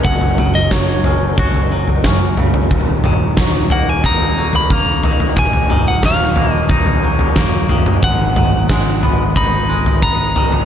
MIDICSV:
0, 0, Header, 1, 5, 480
1, 0, Start_track
1, 0, Key_signature, -6, "minor"
1, 0, Tempo, 665188
1, 38, Time_signature, 4, 2, 24, 8
1, 7685, End_track
2, 0, Start_track
2, 0, Title_t, "Lead electric guitar"
2, 0, Program_c, 0, 29
2, 33, Note_on_c, 0, 78, 68
2, 398, Note_on_c, 0, 75, 58
2, 406, Note_off_c, 0, 78, 0
2, 521, Note_off_c, 0, 75, 0
2, 521, Note_on_c, 0, 73, 57
2, 999, Note_off_c, 0, 73, 0
2, 2686, Note_on_c, 0, 78, 66
2, 2809, Note_off_c, 0, 78, 0
2, 2809, Note_on_c, 0, 80, 68
2, 2922, Note_off_c, 0, 80, 0
2, 2930, Note_on_c, 0, 82, 72
2, 3286, Note_off_c, 0, 82, 0
2, 3289, Note_on_c, 0, 83, 73
2, 3410, Note_off_c, 0, 83, 0
2, 3410, Note_on_c, 0, 82, 76
2, 3882, Note_off_c, 0, 82, 0
2, 3889, Note_on_c, 0, 80, 74
2, 4241, Note_off_c, 0, 80, 0
2, 4244, Note_on_c, 0, 78, 56
2, 4363, Note_off_c, 0, 78, 0
2, 4370, Note_on_c, 0, 77, 55
2, 4702, Note_off_c, 0, 77, 0
2, 4702, Note_on_c, 0, 75, 55
2, 4814, Note_off_c, 0, 75, 0
2, 5801, Note_on_c, 0, 78, 68
2, 6730, Note_off_c, 0, 78, 0
2, 6762, Note_on_c, 0, 83, 77
2, 7234, Note_off_c, 0, 83, 0
2, 7237, Note_on_c, 0, 82, 79
2, 7685, Note_off_c, 0, 82, 0
2, 7685, End_track
3, 0, Start_track
3, 0, Title_t, "Clean electric guitar"
3, 0, Program_c, 1, 27
3, 0, Note_on_c, 1, 49, 45
3, 0, Note_on_c, 1, 54, 49
3, 0, Note_on_c, 1, 61, 51
3, 0, Note_on_c, 1, 66, 51
3, 43, Note_on_c, 1, 42, 47
3, 273, Note_off_c, 1, 49, 0
3, 282, Note_on_c, 1, 49, 47
3, 514, Note_off_c, 1, 54, 0
3, 517, Note_on_c, 1, 54, 51
3, 760, Note_off_c, 1, 61, 0
3, 763, Note_on_c, 1, 61, 50
3, 999, Note_off_c, 1, 66, 0
3, 1002, Note_on_c, 1, 66, 54
3, 1239, Note_off_c, 1, 42, 0
3, 1239, Note_off_c, 1, 54, 0
3, 1242, Note_on_c, 1, 54, 49
3, 1478, Note_off_c, 1, 49, 0
3, 1481, Note_off_c, 1, 61, 0
3, 1484, Note_on_c, 1, 61, 51
3, 1726, Note_on_c, 1, 49, 47
3, 1958, Note_on_c, 1, 39, 49
3, 1961, Note_off_c, 1, 49, 0
3, 1979, Note_off_c, 1, 61, 0
3, 2198, Note_off_c, 1, 54, 0
3, 2200, Note_on_c, 1, 51, 50
3, 2439, Note_on_c, 1, 54, 54
3, 2684, Note_on_c, 1, 58, 52
3, 2914, Note_off_c, 1, 66, 0
3, 2917, Note_on_c, 1, 63, 58
3, 3156, Note_off_c, 1, 39, 0
3, 3157, Note_off_c, 1, 54, 0
3, 3160, Note_on_c, 1, 54, 50
3, 3392, Note_off_c, 1, 58, 0
3, 3397, Note_off_c, 1, 51, 0
3, 3401, Note_on_c, 1, 58, 53
3, 3641, Note_on_c, 1, 51, 51
3, 3880, Note_on_c, 1, 39, 53
3, 4112, Note_off_c, 1, 51, 0
3, 4121, Note_on_c, 1, 51, 50
3, 4355, Note_off_c, 1, 54, 0
3, 4358, Note_on_c, 1, 54, 54
3, 4591, Note_off_c, 1, 58, 0
3, 4600, Note_on_c, 1, 58, 49
3, 4836, Note_off_c, 1, 63, 0
3, 4839, Note_on_c, 1, 63, 55
3, 5077, Note_off_c, 1, 39, 0
3, 5078, Note_off_c, 1, 54, 0
3, 5081, Note_on_c, 1, 54, 50
3, 5314, Note_off_c, 1, 58, 0
3, 5318, Note_off_c, 1, 51, 0
3, 5322, Note_on_c, 1, 58, 51
3, 5556, Note_on_c, 1, 51, 48
3, 5795, Note_on_c, 1, 44, 49
3, 5796, Note_off_c, 1, 51, 0
3, 5799, Note_off_c, 1, 58, 0
3, 5816, Note_off_c, 1, 54, 0
3, 6036, Note_on_c, 1, 51, 47
3, 6280, Note_on_c, 1, 56, 52
3, 6514, Note_on_c, 1, 59, 50
3, 6753, Note_off_c, 1, 63, 0
3, 6756, Note_on_c, 1, 63, 58
3, 6985, Note_off_c, 1, 56, 0
3, 6994, Note_on_c, 1, 56, 53
3, 6996, Note_off_c, 1, 44, 0
3, 7231, Note_off_c, 1, 59, 0
3, 7234, Note_on_c, 1, 59, 53
3, 7237, Note_off_c, 1, 51, 0
3, 7479, Note_on_c, 1, 51, 51
3, 7685, Note_off_c, 1, 51, 0
3, 7685, Note_off_c, 1, 56, 0
3, 7685, Note_off_c, 1, 59, 0
3, 7685, Note_off_c, 1, 63, 0
3, 7685, End_track
4, 0, Start_track
4, 0, Title_t, "Picked electric bass"
4, 0, Program_c, 2, 34
4, 33, Note_on_c, 2, 30, 56
4, 1925, Note_off_c, 2, 30, 0
4, 1955, Note_on_c, 2, 27, 55
4, 3846, Note_off_c, 2, 27, 0
4, 3874, Note_on_c, 2, 27, 55
4, 5766, Note_off_c, 2, 27, 0
4, 5793, Note_on_c, 2, 32, 57
4, 7685, Note_off_c, 2, 32, 0
4, 7685, End_track
5, 0, Start_track
5, 0, Title_t, "Drums"
5, 32, Note_on_c, 9, 43, 58
5, 33, Note_on_c, 9, 36, 74
5, 104, Note_off_c, 9, 43, 0
5, 106, Note_off_c, 9, 36, 0
5, 154, Note_on_c, 9, 43, 56
5, 226, Note_off_c, 9, 43, 0
5, 275, Note_on_c, 9, 43, 54
5, 275, Note_on_c, 9, 47, 57
5, 347, Note_off_c, 9, 43, 0
5, 347, Note_off_c, 9, 47, 0
5, 513, Note_on_c, 9, 38, 51
5, 514, Note_on_c, 9, 36, 72
5, 586, Note_off_c, 9, 36, 0
5, 586, Note_off_c, 9, 38, 0
5, 752, Note_on_c, 9, 43, 59
5, 824, Note_off_c, 9, 43, 0
5, 993, Note_on_c, 9, 43, 60
5, 994, Note_on_c, 9, 36, 76
5, 1065, Note_off_c, 9, 43, 0
5, 1067, Note_off_c, 9, 36, 0
5, 1113, Note_on_c, 9, 43, 57
5, 1185, Note_off_c, 9, 43, 0
5, 1353, Note_on_c, 9, 43, 55
5, 1425, Note_off_c, 9, 43, 0
5, 1472, Note_on_c, 9, 38, 55
5, 1472, Note_on_c, 9, 47, 59
5, 1474, Note_on_c, 9, 36, 78
5, 1544, Note_off_c, 9, 38, 0
5, 1544, Note_off_c, 9, 47, 0
5, 1547, Note_off_c, 9, 36, 0
5, 1713, Note_on_c, 9, 43, 57
5, 1713, Note_on_c, 9, 47, 53
5, 1785, Note_off_c, 9, 43, 0
5, 1785, Note_off_c, 9, 47, 0
5, 1832, Note_on_c, 9, 43, 58
5, 1832, Note_on_c, 9, 47, 54
5, 1904, Note_off_c, 9, 43, 0
5, 1904, Note_off_c, 9, 47, 0
5, 1955, Note_on_c, 9, 36, 77
5, 1955, Note_on_c, 9, 43, 61
5, 2027, Note_off_c, 9, 36, 0
5, 2027, Note_off_c, 9, 43, 0
5, 2192, Note_on_c, 9, 43, 58
5, 2192, Note_on_c, 9, 47, 56
5, 2264, Note_off_c, 9, 43, 0
5, 2264, Note_off_c, 9, 47, 0
5, 2431, Note_on_c, 9, 38, 58
5, 2434, Note_on_c, 9, 36, 77
5, 2503, Note_off_c, 9, 38, 0
5, 2506, Note_off_c, 9, 36, 0
5, 2671, Note_on_c, 9, 43, 65
5, 2743, Note_off_c, 9, 43, 0
5, 2914, Note_on_c, 9, 43, 61
5, 2915, Note_on_c, 9, 36, 78
5, 2986, Note_off_c, 9, 43, 0
5, 2987, Note_off_c, 9, 36, 0
5, 3270, Note_on_c, 9, 43, 58
5, 3342, Note_off_c, 9, 43, 0
5, 3394, Note_on_c, 9, 36, 80
5, 3466, Note_off_c, 9, 36, 0
5, 3633, Note_on_c, 9, 43, 59
5, 3705, Note_off_c, 9, 43, 0
5, 3753, Note_on_c, 9, 43, 60
5, 3825, Note_off_c, 9, 43, 0
5, 3870, Note_on_c, 9, 43, 61
5, 3873, Note_on_c, 9, 36, 81
5, 3942, Note_off_c, 9, 43, 0
5, 3945, Note_off_c, 9, 36, 0
5, 3992, Note_on_c, 9, 43, 60
5, 4064, Note_off_c, 9, 43, 0
5, 4113, Note_on_c, 9, 43, 59
5, 4113, Note_on_c, 9, 47, 58
5, 4185, Note_off_c, 9, 43, 0
5, 4185, Note_off_c, 9, 47, 0
5, 4351, Note_on_c, 9, 38, 57
5, 4352, Note_on_c, 9, 36, 77
5, 4423, Note_off_c, 9, 38, 0
5, 4424, Note_off_c, 9, 36, 0
5, 4588, Note_on_c, 9, 43, 66
5, 4660, Note_off_c, 9, 43, 0
5, 4827, Note_on_c, 9, 43, 60
5, 4831, Note_on_c, 9, 36, 81
5, 4899, Note_off_c, 9, 43, 0
5, 4903, Note_off_c, 9, 36, 0
5, 4951, Note_on_c, 9, 43, 58
5, 5023, Note_off_c, 9, 43, 0
5, 5189, Note_on_c, 9, 43, 61
5, 5261, Note_off_c, 9, 43, 0
5, 5309, Note_on_c, 9, 38, 60
5, 5309, Note_on_c, 9, 47, 58
5, 5312, Note_on_c, 9, 36, 79
5, 5381, Note_off_c, 9, 38, 0
5, 5381, Note_off_c, 9, 47, 0
5, 5384, Note_off_c, 9, 36, 0
5, 5551, Note_on_c, 9, 43, 59
5, 5551, Note_on_c, 9, 47, 58
5, 5623, Note_off_c, 9, 43, 0
5, 5623, Note_off_c, 9, 47, 0
5, 5674, Note_on_c, 9, 43, 58
5, 5674, Note_on_c, 9, 47, 56
5, 5746, Note_off_c, 9, 43, 0
5, 5746, Note_off_c, 9, 47, 0
5, 5793, Note_on_c, 9, 36, 81
5, 5794, Note_on_c, 9, 43, 65
5, 5865, Note_off_c, 9, 36, 0
5, 5866, Note_off_c, 9, 43, 0
5, 6035, Note_on_c, 9, 43, 58
5, 6035, Note_on_c, 9, 47, 59
5, 6107, Note_off_c, 9, 43, 0
5, 6107, Note_off_c, 9, 47, 0
5, 6274, Note_on_c, 9, 36, 79
5, 6275, Note_on_c, 9, 38, 57
5, 6346, Note_off_c, 9, 36, 0
5, 6348, Note_off_c, 9, 38, 0
5, 6516, Note_on_c, 9, 43, 63
5, 6588, Note_off_c, 9, 43, 0
5, 6754, Note_on_c, 9, 36, 79
5, 6754, Note_on_c, 9, 43, 64
5, 6826, Note_off_c, 9, 36, 0
5, 6826, Note_off_c, 9, 43, 0
5, 7117, Note_on_c, 9, 43, 63
5, 7189, Note_off_c, 9, 43, 0
5, 7234, Note_on_c, 9, 36, 78
5, 7306, Note_off_c, 9, 36, 0
5, 7476, Note_on_c, 9, 43, 61
5, 7548, Note_off_c, 9, 43, 0
5, 7593, Note_on_c, 9, 43, 63
5, 7665, Note_off_c, 9, 43, 0
5, 7685, End_track
0, 0, End_of_file